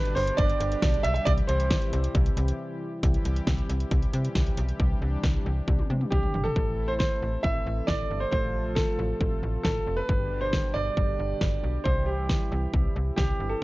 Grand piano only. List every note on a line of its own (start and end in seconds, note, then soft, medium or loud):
0.00 0.17 B4 medium
0.15 0.38 C5 medium
0.37 1.06 D5 loud
1.03 1.13 E5 loud
1.14 1.26 E5 loud
1.25 1.30 D5 loud
1.47 2.10 C5 medium
6.11 6.45 G4 medium
6.44 6.90 A4 medium
6.88 6.93 C5 medium
6.99 7.41 C5 medium
7.43 7.89 E5 loud
7.87 8.22 D5 loud
8.20 8.30 C5 medium
8.31 8.77 C5 loud
8.75 9.62 A4 medium
9.63 9.98 A4 medium
9.97 10.43 B4 medium
10.41 10.76 C5 medium
10.74 11.88 D5 loud
11.84 12.07 C5 medium
12.06 12.91 G4 medium
13.16 13.51 G4 medium
13.49 13.63 A4 medium